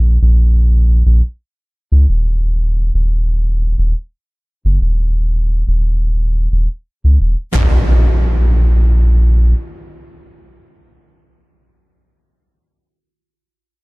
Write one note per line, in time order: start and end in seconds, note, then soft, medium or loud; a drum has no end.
0.00 0.18 A#1 medium
0.22 1.03 A#1 medium
1.06 1.21 A#1 loud
1.92 2.06 C#2 loud
2.09 2.91 D#1 medium
2.94 3.75 D#1 medium
3.78 3.94 D#1 loud
4.65 4.79 F#1 loud
4.81 5.63 D#1 medium
5.67 6.48 D#1 medium
6.52 6.67 D#1 medium
7.04 7.18 C#2 medium
7.20 7.36 D#1 medium
7.53 9.54 A#1 medium
7.53 impact medium